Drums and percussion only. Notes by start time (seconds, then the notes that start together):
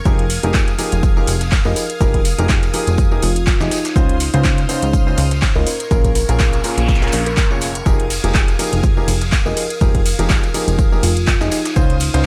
0.06 kick, tambourine, shaker
0.19 closed hi-hat
0.30 snare, open hi-hat, tambourine, shaker
0.43 closed hi-hat, tambourine
0.54 kick, snare, clap, tambourine, shaker
0.68 snare, closed hi-hat, tambourine
0.78 open hi-hat, tambourine, shaker
0.92 closed hi-hat, tambourine
1.03 kick, tambourine, shaker
1.17 tambourine
1.27 open hi-hat, tambourine, shaker
1.40 snare, closed hi-hat, tambourine
1.52 kick, snare, clap, open hi-hat, tambourine
1.65 tambourine
1.76 open hi-hat, tambourine, shaker
1.90 closed hi-hat, tambourine
2.01 kick, tambourine, shaker
2.14 kick, closed hi-hat
2.25 snare, open hi-hat, tambourine, shaker
2.39 closed hi-hat, tambourine
2.49 kick, snare, clap, tambourine, shaker
2.63 snare, closed hi-hat, tambourine
2.74 open hi-hat, tambourine, shaker
2.87 closed hi-hat, tambourine
2.98 kick, tambourine, shaker
3.11 tambourine
3.22 open hi-hat, tambourine, shaker
3.36 closed hi-hat, tambourine
3.47 kick, snare, clap, tambourine, shaker
3.60 snare, tambourine, shaker
3.71 snare, open hi-hat, tambourine, shaker
3.84 snare, closed hi-hat, tambourine, shaker
3.96 kick, tambourine, shaker
4.09 closed hi-hat
4.20 snare, open hi-hat, tambourine, shaker
4.33 closed hi-hat, tambourine
4.44 kick, snare, clap, tambourine, shaker
4.58 snare, closed hi-hat, tambourine
4.69 open hi-hat, tambourine, shaker
4.82 closed hi-hat, tambourine
4.93 kick, tambourine, shaker
5.08 tambourine
5.17 open hi-hat, tambourine, shaker
5.31 snare, closed hi-hat, tambourine
5.42 kick, snare, clap, open hi-hat, tambourine
5.55 tambourine
5.67 open hi-hat, tambourine, shaker
5.80 closed hi-hat, tambourine
5.91 kick, tambourine, shaker
6.04 kick, closed hi-hat, tambourine
6.15 snare, open hi-hat, tambourine, shaker
6.28 closed hi-hat, tambourine
6.40 kick, snare, clap, tambourine, shaker
6.53 snare, closed hi-hat, tambourine
6.64 open hi-hat, tambourine, shaker
6.78 closed hi-hat, tambourine
6.89 kick, snare, tambourine, shaker
6.95 snare, shaker
7.02 snare, tambourine, shaker
7.08 snare, shaker
7.12 open hi-hat, tambourine, shaker
7.26 closed hi-hat, tambourine
7.37 kick, snare, clap, tambourine, shaker
7.51 tambourine
7.61 snare, open hi-hat, tambourine, shaker
7.75 closed hi-hat, tambourine
7.86 kick, tambourine, shaker
8.00 closed hi-hat
8.10 snare, open hi-hat, ride, tambourine, shaker
8.24 closed hi-hat
8.35 kick, snare, clap, tambourine, shaker
8.48 snare, closed hi-hat, tambourine
8.59 open hi-hat, ride, tambourine, shaker
8.73 closed hi-hat, tambourine
8.83 kick, tambourine, shaker
8.97 tambourine
9.08 open hi-hat, ride, tambourine, shaker
9.21 snare, closed hi-hat, tambourine
9.32 kick, snare, clap, open hi-hat, tambourine
9.46 tambourine
9.57 open hi-hat, ride, tambourine, shaker
9.70 closed hi-hat, tambourine
9.81 kick, tambourine, shaker
9.95 kick, closed hi-hat
10.06 snare, open hi-hat, ride, tambourine, shaker
10.19 closed hi-hat, tambourine
10.29 kick, snare, clap, tambourine, shaker
10.43 snare, closed hi-hat, tambourine
10.54 open hi-hat, ride, tambourine, shaker
10.67 closed hi-hat, tambourine
10.79 kick, tambourine, shaker
10.93 tambourine
11.03 open hi-hat, ride, tambourine, shaker
11.16 closed hi-hat, tambourine
11.27 kick, snare, clap, tambourine, shaker
11.41 snare, tambourine, shaker
11.51 snare, open hi-hat, ride, tambourine, shaker
11.65 snare, closed hi-hat, tambourine, shaker
11.76 kick, tambourine, shaker
11.90 closed hi-hat
12.00 snare, open hi-hat, ride, tambourine, shaker
12.14 closed hi-hat, tambourine